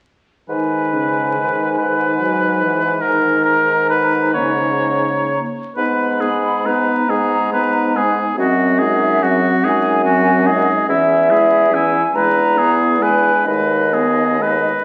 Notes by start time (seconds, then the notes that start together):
0.48 G#2 D#3 D#4 B4 G#5
0.93 C#3
1.36 D#3
1.78 D#3 B4
2.20 F#3
2.63 E3
3.01 D#3 A#4 A#5
3.44 A#4
3.90 B4
4.34 C#3 A#3 C#5 A#5
5.76 G#2 B3 D#4 B4 B5
6.20 G#3 B3 G#4
6.65 B3 D#4 B4 A#5
7.08 G#2 G#3 B3 G#4
7.52 B3 D#4 B4
7.94 G#3 B3 G#4 G#5
8.37 F#2 F#3 C4 F#4 D#5
8.78 G#3 D#4 G#4
9.02 E5
9.22 F#3 C4 F#4 F#5
9.63 F#2 G#3 D#4 G#4 G#5
10.04 F#3 C4 F#4
10.46 G#3 D#4 G#4 D#5
10.87 E2 E3 C#4 E4 E5
11.29 G#3 E4 G#4
11.72 E3 C#4 E4 G#5
12.14 E2 G#3 D4 B4 A#5
12.56 B3 E4 G#4
13.00 G#3 D4 B4 G#5
13.44 D#2 G#3 D#4 B4 D#5
13.93 B3 G#4
14.39 G#3 D#4 B4